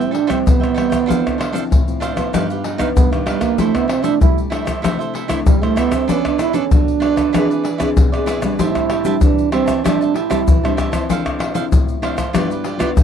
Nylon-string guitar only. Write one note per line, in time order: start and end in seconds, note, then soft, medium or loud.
0.00 0.42 A2 medium
0.00 0.12 G3 medium
0.00 0.12 C4 medium
0.00 0.12 E4 medium
0.28 0.70 G3 medium
0.28 0.71 C4 medium
0.28 0.71 E4 medium
0.46 1.05 E3 medium
0.77 0.95 G3 medium
0.77 0.95 C4 medium
0.77 0.95 E4 medium
1.08 1.68 D3 medium
1.08 1.37 F3 medium
1.08 1.38 C4 medium
1.08 1.38 E4 medium
1.53 1.80 F3 medium
1.53 1.81 C4 medium
1.53 1.81 E4 medium
1.70 2.30 A2 medium
1.87 2.13 F3 medium
1.87 2.13 C4 medium
1.87 2.13 E4 medium
2.15 2.74 F3 medium
2.15 2.74 B3 medium
2.15 2.74 D#4 medium
2.33 2.92 G2 medium
2.78 3.21 F3 medium
2.78 3.21 B3 medium
2.78 3.22 D#4 medium
2.95 3.55 G2 medium
3.26 3.53 F3 medium
3.26 3.53 B3 medium
3.26 3.53 D#4 medium
3.58 4.18 C3 medium
3.58 3.88 A3 medium
3.58 3.88 D4 medium
3.58 3.88 E4 medium
4.03 4.46 A3 medium
4.03 4.46 D4 medium
4.03 4.47 E4 medium
4.21 4.80 G3 medium
4.52 4.70 A3 soft
4.52 4.71 D4 medium
4.52 4.71 E4 medium
4.84 5.43 C3 medium
4.84 5.26 A3 medium
4.84 5.26 D4 medium
4.84 5.26 E4 medium
5.28 5.56 A3 medium
5.28 5.56 D4 medium
5.28 5.56 E4 medium
5.47 6.06 G3 medium
5.62 5.88 A3 medium
5.62 5.89 D4 medium
5.62 5.89 E4 medium
5.91 6.50 D4 medium
5.91 6.50 A4 medium
5.91 6.50 C#5 medium
6.09 6.68 B3 medium
6.54 6.97 D4 medium
6.54 6.97 A4 medium
6.54 6.97 C#5 medium
6.73 7.31 F#3 medium
7.03 7.21 D4 medium
7.03 7.21 A4 medium
7.03 7.22 C#5 medium
7.35 7.94 E3 medium
7.35 7.64 C4 medium
7.35 7.64 D4 medium
7.35 7.64 G#4 medium
7.80 8.07 C4 medium
7.80 8.07 D4 medium
7.80 8.07 G#4 medium
7.97 8.56 B2 medium
8.13 8.39 C4 medium
8.13 8.40 D4 medium
8.13 8.40 G#4 medium
8.43 9.01 G3 medium
8.43 9.01 C4 medium
8.43 9.01 D4 medium
8.60 9.19 A2 medium
9.04 9.47 G3 medium
9.04 9.47 C4 medium
9.04 9.48 D4 medium
9.21 9.81 E3 medium
9.51 9.71 G3 medium
9.51 9.71 C4 medium
9.51 9.71 D4 medium
9.83 10.43 A2 medium
9.83 10.13 G3 medium
9.83 10.14 C4 medium
9.83 10.14 D4 medium
10.29 10.56 G3 medium
10.29 10.56 C4 medium
10.29 10.57 D4 medium
10.46 11.06 E3 medium
10.63 10.89 G3 medium
10.63 10.89 C4 medium
10.63 10.89 D4 medium
10.92 11.50 F3 medium
10.92 11.51 C4 medium
10.92 11.51 E4 medium
11.09 11.69 D3 medium
11.54 11.97 F3 medium
11.54 11.97 C4 medium
11.54 11.97 E4 medium
11.72 12.31 A2 medium
12.01 12.20 F3 medium
12.01 12.21 C4 medium
12.01 12.21 E4 medium
12.33 12.93 G2 medium
12.33 12.63 F3 medium
12.33 12.63 B3 medium
12.33 12.63 E4 medium
12.77 13.03 F3 medium
12.77 13.03 B3 medium
12.77 13.03 E4 medium
12.95 13.03 D3 medium